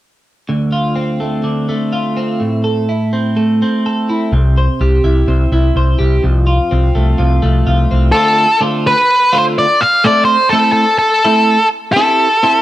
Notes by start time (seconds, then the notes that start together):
0.49 D2
0.72 F4
0.96 C4
1.20 A3
1.44 D3
1.69 A3
1.93 F4
2.17 C4
2.40 A2
2.64 A4
2.89 E4
3.13 C4
3.37 A3
3.62 C4
3.86 A4
4.09 E4
4.32 C2 C3
4.58 C5
4.81 C2 G4
5.04 C2 E4
5.28 C2 C4
5.52 C2 E4
5.76 C2 C5
5.99 C2 G4
6.23 C2 F2
6.47 F4
6.71 C2 C4
6.95 C2 A3
7.18 C2 F3
7.42 C2 A3
7.67 C2 F4
7.91 C2 C4
8.12 D3 A3 C4 F4 A4
8.60 D3 A3 C4 F4
8.87 B4
9.33 D3 A3 C4 F4
9.38 C5
9.58 D5
9.81 F5
10.04 A3 C4 E4 A4 D5
10.25 C5
10.49 A3 C4 E4 A4
10.54 A4
10.72 A4
10.98 A4
11.24 A3 C4 E4 A4
11.93 C4 E4 A4
11.97 G4 C5
12.43 C4 E4 G4 C5